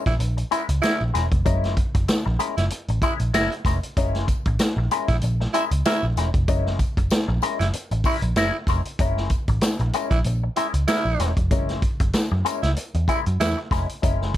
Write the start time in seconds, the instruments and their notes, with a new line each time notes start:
0.06 picked electric bass A#1, tenor saxophone E4, kick, snare, closed hi-hat
0.19 picked electric bass A#1, muted clean electric guitar stroke, closed hi-hat
0.37 muted clean electric guitar stroke, closed hi-hat
0.51 clean electric guitar G#3 C#4 E4 A#4, tenor saxophone E4, closed hi-hat, tambourine
0.69 picked electric bass C#2, muted clean electric guitar stroke, closed hi-hat
0.82 clean electric guitar G#3 C#4 E4 A#4, tenor saxophone E4, snare, closed hi-hat, tambourine
1.01 picked electric bass A#1
1.14 picked electric bass E1, clean electric guitar G#3 C#4 E4 A#4, snare, closed hi-hat, tambourine
1.31 picked electric bass F1, muted clean electric guitar stroke, kick, closed hi-hat
1.45 picked electric bass F#1, clean electric guitar G#3 C#4 E4 A#4, kick, closed hi-hat, tambourine
1.64 snare, closed hi-hat
1.77 kick, closed hi-hat
1.95 picked electric bass F#1, muted clean electric guitar stroke, kick, closed hi-hat
2.08 muted clean electric guitar stroke, snare, closed hi-hat, tambourine
2.26 picked electric bass A#1, muted clean electric guitar stroke
2.39 clean electric guitar G#3 C#4 E4 A#4, closed hi-hat, tambourine
2.57 picked electric bass F#1, tenor saxophone E4, snare, closed hi-hat
2.70 muted picked electric bass stroke, muted clean electric guitar stroke, closed hi-hat
2.88 picked electric bass A1, muted clean electric guitar stroke, closed hi-hat
3.02 clean electric guitar G#3 C#4 E4 A#4, tenor saxophone E4, kick, closed hi-hat, tambourine
3.19 picked electric bass A#1, muted clean electric guitar stroke, closed hi-hat
3.34 clean electric guitar G#3 C#4 E4 A#4, tenor saxophone E4, snare, closed hi-hat, tambourine
3.52 closed hi-hat
3.65 picked electric bass F1, clean electric guitar G#3 C#4 E4 A#4, kick, snare, closed hi-hat, tambourine
3.83 muted clean electric guitar stroke, closed hi-hat
3.97 picked electric bass F#1, clean electric guitar G#3 C#4 E4 A#4, kick, closed hi-hat, tambourine
4.15 snare, closed hi-hat
4.28 kick, closed hi-hat, tambourine
4.46 picked electric bass A1, muted clean electric guitar stroke, kick, closed hi-hat
4.59 muted clean electric guitar stroke, snare, closed hi-hat, tambourine
4.77 picked electric bass A#1, muted clean electric guitar stroke
4.91 clean electric guitar G#3 C#4 E4 A#4, closed hi-hat, tambourine
5.08 picked electric bass A#1, tenor saxophone E4, kick, snare, closed hi-hat
5.22 picked electric bass A#1, muted clean electric guitar stroke, closed hi-hat, tambourine
5.40 muted clean electric guitar stroke, snare
5.53 clean electric guitar G#3 C#4 E4 A#4, tenor saxophone E4, closed hi-hat, tambourine
5.71 picked electric bass C#2, closed hi-hat
5.85 clean electric guitar G#3 C#4 E4 A#4, tenor saxophone E4, snare, closed hi-hat, tambourine
6.03 picked electric bass A#1
6.17 picked electric bass E1, clean electric guitar G#3 C#4 E4 A#4, snare, closed hi-hat, tambourine
6.34 picked electric bass F1, muted clean electric guitar stroke, kick, closed hi-hat
6.48 picked electric bass F#1, clean electric guitar G#3 C#4 E4 A#4, kick, closed hi-hat, tambourine
6.66 snare
6.79 kick, closed hi-hat, tambourine
6.97 picked electric bass F#1, muted clean electric guitar stroke, kick, closed hi-hat
7.10 muted clean electric guitar stroke, snare, closed hi-hat, tambourine
7.28 picked electric bass A#1, muted clean electric guitar stroke
7.42 clean electric guitar G#3 C#4 E4 A#4, closed hi-hat, tambourine
7.59 picked electric bass F#1, tenor saxophone E4, snare, closed hi-hat
7.73 muted picked electric bass stroke, muted clean electric guitar stroke, closed hi-hat, tambourine
7.91 picked electric bass A1, muted clean electric guitar stroke, closed hi-hat
8.04 clean electric guitar G#3 C#4 E4 A#4, tenor saxophone E4, kick, open hi-hat, tambourine
8.22 picked electric bass A#1, closed hi-hat
8.36 picked electric bass F#1, clean electric guitar G#3 C#4 E4 A#4, tenor saxophone E4, snare, closed hi-hat, tambourine
8.67 picked electric bass F1, clean electric guitar G#3 C#4 E4 A#4, kick, snare, closed hi-hat, tambourine
8.85 muted clean electric guitar stroke, closed hi-hat
8.99 picked electric bass F#1, clean electric guitar G#3 C#4 E4 A#4, kick, closed hi-hat, tambourine
9.17 snare
9.30 kick, closed hi-hat, tambourine
9.48 picked electric bass A1, muted clean electric guitar stroke, kick, closed hi-hat
9.61 muted clean electric guitar stroke, snare, closed hi-hat, tambourine
9.80 picked electric bass A#1, muted clean electric guitar stroke, closed hi-hat
9.93 clean electric guitar G#3 C#4 E4 A#4, closed hi-hat, tambourine
10.11 picked electric bass A#1, tenor saxophone E4, kick, snare, closed hi-hat
10.24 picked electric bass A#1, muted clean electric guitar stroke, closed hi-hat, tambourine
10.43 muted clean electric guitar stroke
10.56 clean electric guitar G#3 C#4 E4 A#4, tenor saxophone E4, closed hi-hat, tambourine
10.74 picked electric bass C#2, muted clean electric guitar stroke, closed hi-hat
10.87 clean electric guitar G#3 C#4 E4 A#4, tenor saxophone E4, snare, closed hi-hat, tambourine
11.05 picked electric bass A#1
11.19 picked electric bass E1, clean electric guitar G#3 C#4 E4 A#4, snare, closed hi-hat, tambourine
11.37 picked electric bass F1, muted clean electric guitar stroke, kick, closed hi-hat
11.51 picked electric bass F#1, clean electric guitar G#3 C#4 E4 A#4, kick, closed hi-hat, tambourine
11.69 snare, closed hi-hat
11.82 kick, closed hi-hat
12.00 picked electric bass F#1, muted clean electric guitar stroke, kick, closed hi-hat
12.13 muted clean electric guitar stroke, muted picked electric bass stroke, snare, closed hi-hat, tambourine
12.32 picked electric bass F#2, muted clean electric guitar stroke
12.45 clean electric guitar G#3 C#4 E4 A#4, closed hi-hat, tambourine
12.62 picked electric bass C#2, tenor saxophone E4, snare, closed hi-hat
12.77 muted picked electric bass stroke, muted clean electric guitar stroke, closed hi-hat, tambourine
12.94 picked electric bass E2, muted clean electric guitar stroke, closed hi-hat
13.08 clean electric guitar G#3 C#4 E4 A#4, tenor saxophone E4, kick, closed hi-hat, tambourine
13.26 picked electric bass F#2, closed hi-hat
13.40 picked electric bass E2, tenor saxophone E4, snare, closed hi-hat, tambourine
13.57 muted clean electric guitar stroke
13.71 picked electric bass F1, clean electric guitar G#3 C#4 E4 A#4, kick, snare, closed hi-hat, tambourine
13.89 closed hi-hat
14.02 picked electric bass F#1, clean electric guitar G#3 C#4 E4 A#4, kick, closed hi-hat, tambourine
14.22 snare
14.34 closed hi-hat